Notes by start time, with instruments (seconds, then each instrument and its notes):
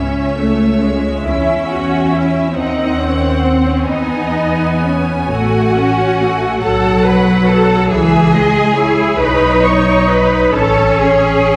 Already playing: double bass section C#2, viola section C#4, cello section C#4, violin section C#5 E5
0.37 viola section A3
0.82 viola section G#3
1.26 double bass section E2, viola section C#4, cello section E4, violin section E5
1.69 cello section F#4, violin section F#5
2.13 cello section E4, violin section E5
2.56 double bass section D#2, viola section C4, cello section D#4, violin section D#5 F#5
2.99 cello section C#4, violin section C#5
3.43 cello section C4, violin section C5
3.66 cello section C#4, violin section C#5
3.88 double bass section E2, viola section B3, cello section D#4, violin section D#5 G#5
4.83 cello section C#4, violin section C#5
5.31 double bass section A1, viola section A3, cello section F#4, violin section F#5
5.77 viola section C#4
6.22 viola section A3
6.63 double bass section B1, viola section F#3, cello section A4, violin section F#5 A5
7.06 cello section B4, violin section B5
7.49 cello section A4, violin section A5
7.91 double bass section C#2, viola section E3, cello section G#4, violin section E5 G#5
8.33 viola section G#3, violin section D#5
8.75 viola section E4, violin section C#5
9.19 double bass section B1, viola section D#4, cello section B4, violin section B5
9.64 cello section C#5, violin section C#6
10.08 cello section B4, violin section B5
10.54 double bass section A1, viola section C#4, cello section A4, violin section C#5 A5
10.99 cello section G#4, violin section G#5